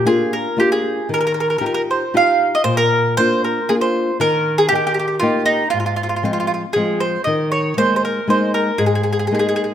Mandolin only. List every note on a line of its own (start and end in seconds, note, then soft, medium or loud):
0.07 0.34 G#4 medium
0.33 0.57 A#4 medium
0.60 0.71 G4 medium
0.72 1.08 G#4 medium
1.14 1.19 A#4 medium
1.21 1.26 A#4 medium
1.27 1.33 A#4 medium
1.34 1.39 A#4 medium
1.40 1.48 A#4 medium
1.50 1.57 A#4 soft
1.58 1.65 A#4 medium
1.66 1.73 A#4 medium
1.74 1.81 A#4 medium
1.91 2.13 C5 medium
2.17 2.55 F5 medium
2.55 2.64 D#5 medium
2.64 2.77 C5 loud
2.77 3.13 A#4 loud
3.17 3.44 C5 loud
3.44 3.69 A#4 medium
3.69 3.74 G#4 medium
3.81 4.17 C5 medium
4.21 4.56 A#4 medium
4.58 4.68 G#4 medium
4.69 4.74 G4 loud
4.75 4.84 G4 medium
4.87 4.93 G4 medium
4.94 4.98 G4 medium
4.99 5.06 G4 medium
5.08 5.15 G4 soft
5.20 5.45 F4 medium
5.46 5.70 D#4 medium
5.70 5.78 F4 medium
5.80 5.85 F4 soft
5.86 5.94 F4 medium
5.96 6.02 F4 medium
6.03 6.08 F4 medium
6.09 6.15 F4 soft
6.16 6.24 F4 soft
6.25 6.32 F4 medium
6.33 6.39 F4 medium
6.40 6.46 F4 medium
6.47 6.53 F4 medium
6.54 6.62 F4 soft
6.73 6.99 G#4 medium
7.00 7.24 C5 medium
7.24 7.50 D#5 medium
7.52 7.76 C#5 medium
7.78 7.95 C5 medium
7.96 8.04 C5 medium
8.05 8.28 A#4 medium
8.30 8.54 C5 medium
8.54 8.81 A#4 medium
8.78 8.85 G#4 medium
8.86 8.94 G#4 medium
8.95 9.02 G#4 medium
9.03 9.11 G#4 medium
9.13 9.18 G#4 medium
9.19 9.26 G#4 medium
9.27 9.34 G#4 medium
9.35 9.38 G#4 medium
9.39 9.47 G#4 medium
9.49 9.55 G#4 medium
9.56 9.63 G#4 medium
9.64 9.71 G#4 soft